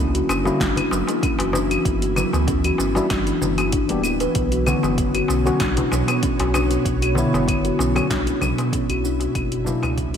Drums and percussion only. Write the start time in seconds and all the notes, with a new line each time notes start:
0.15 closed hi-hat, shaker
0.29 darbuka tek, claves, shaker
0.45 darbuka ka, shaker
0.60 kick, snare, closed hi-hat, shaker
0.76 closed hi-hat, darbuka dum, claves, shaker
0.91 darbuka ka, darbuka tek, shaker
1.07 closed hi-hat, darbuka ka, shaker
1.23 kick, closed hi-hat, claves, shaker
1.39 closed hi-hat, darbuka ka, darbuka tek, shaker
1.53 darbuka tek, darbuka dum, shaker
1.71 closed hi-hat, claves, shaker
1.85 kick, closed hi-hat, shaker
2.02 closed hi-hat, shaker
2.16 darbuka dum, claves, shaker
2.33 darbuka tek, shaker
2.48 kick, closed hi-hat, shaker
2.64 closed hi-hat, claves, shaker
2.78 darbuka tek, shaker
2.95 darbuka ka, shaker
3.10 kick, snare, closed hi-hat, claves, shaker
3.27 closed hi-hat, shaker
3.42 darbuka dum, shaker
3.58 closed hi-hat, darbuka ka, claves, shaker
3.72 kick, closed hi-hat, shaker
3.89 closed hi-hat, shaker
4.04 claves, shaker
4.20 closed hi-hat, darbuka ka, shaker
4.35 kick, closed hi-hat, shaker
4.52 closed hi-hat, shaker
4.66 darbuka dum, claves, shaker
4.83 darbuka tek, shaker
4.98 kick, closed hi-hat, shaker
5.15 closed hi-hat, claves, shaker
5.28 darbuka tek, shaker
5.47 darbuka ka, shaker
5.60 kick, snare, closed hi-hat, claves, shaker
5.77 closed hi-hat, darbuka dum, shaker
5.92 darbuka ka, darbuka tek, shaker
6.08 closed hi-hat, darbuka ka, claves, shaker
6.23 kick, closed hi-hat, shaker
6.39 closed hi-hat, darbuka ka, darbuka tek, shaker
6.54 darbuka tek, darbuka dum, claves, shaker
6.71 closed hi-hat, shaker
6.85 kick, closed hi-hat, shaker
7.02 closed hi-hat, claves, shaker
7.15 darbuka dum, shaker
7.34 darbuka tek, shaker
7.48 kick, closed hi-hat, claves, shaker
7.65 closed hi-hat, shaker
7.79 darbuka tek, shaker
7.96 darbuka ka, claves, shaker
8.10 kick, snare, closed hi-hat, shaker
8.27 closed hi-hat, shaker
8.41 darbuka dum, claves, shaker
8.58 closed hi-hat, darbuka ka, shaker
8.73 kick, closed hi-hat, shaker
8.90 closed hi-hat, claves, shaker
9.05 shaker
9.20 closed hi-hat, darbuka ka, shaker
9.35 kick, closed hi-hat, claves, shaker
9.52 closed hi-hat, shaker
9.66 darbuka dum, shaker
9.83 darbuka tek, claves, shaker
9.98 kick, closed hi-hat, shaker